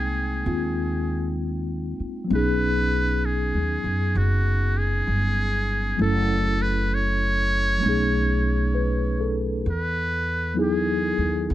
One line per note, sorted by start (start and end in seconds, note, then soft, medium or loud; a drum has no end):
0.00 0.42 C2 medium
0.00 2.28 G#3 soft
0.00 0.43 A#3 soft
0.00 0.45 C4 soft
0.00 2.32 D#4 soft
0.00 1.40 G#4 medium
0.00 2.34 G5 medium
0.44 1.95 D#2 medium
0.44 2.30 A#3 soft
0.44 2.31 C4 soft
0.44 2.31 F4 soft
2.00 muted upright bass stroke soft
2.24 5.96 F#3 soft
2.24 5.98 B3 soft
2.30 3.50 B1 medium
2.30 5.98 C#4 soft
2.30 6.00 D#4 soft
2.35 6.02 G#4 medium
2.35 3.27 B4 medium
3.26 4.19 G#4 medium
3.54 3.82 D#2 soft
3.84 4.13 F#2 medium
4.15 5.03 F#1 medium
4.15 4.79 F#4 medium
4.78 6.00 G#4 medium
5.07 5.95 G1 medium
5.97 7.79 F#1 medium
5.97 7.77 F#3 soft
5.97 7.79 A3 soft
5.97 7.82 C#4 soft
5.97 7.84 E4 soft
6.02 7.84 A4 soft
6.02 6.63 A4 medium
6.62 6.96 B4 medium
6.94 9.37 C#5 medium
7.78 9.64 F#3 soft
7.78 9.65 A3 soft
7.83 9.62 B1 medium
7.83 9.66 C#4 soft
7.83 9.68 D#4 soft
7.89 9.69 G#4 soft
8.75 9.47 B4 soft
9.21 9.85 A4 soft
9.66 11.14 E2 medium
9.70 10.56 B4 medium
10.54 11.54 F#3 soft
10.54 11.54 B3 soft
10.54 11.54 D#4 soft
10.54 11.54 E4 soft
10.59 11.54 G#4 medium
11.18 11.47 D#2 medium
11.50 11.54 B1 medium